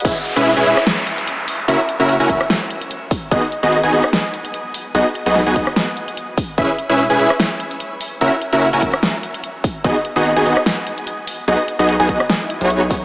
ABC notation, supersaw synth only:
X:1
M:4/4
L:1/16
Q:"Swing 16ths" 1/4=147
K:Elyd
V:1 name="Supersaw synth"
[CEGBe] z2 [CEGBe] z [CEGBg] [CEGBe] z8 z | [CEFAe] z2 [CEFAe] z [CEFAg] [CEFAe] z8 z | [B,DFGd] z2 [B,DFGd] z [B,DFGg] [B,DFGd] z8 z | [B,DFGd] z2 [B,DFGd] z [B,DFGg] [B,DFGd] z8 z |
[CEGBe] z2 [CEGBe] z [CEGBg] [CEGBe] z8 z | [CEFAe] z2 [CEFAe] z [CEFAg] [CEFAe] z8 z | [B,DFGd] z2 [B,DFGd] z [B,DFGg] [B,DFGd] z8 z | [B,DFGd] z2 [B,DFGd] z [B,DFGg] [B,DFGd] z4 [B,DFGc]4- [B,DFGc] |]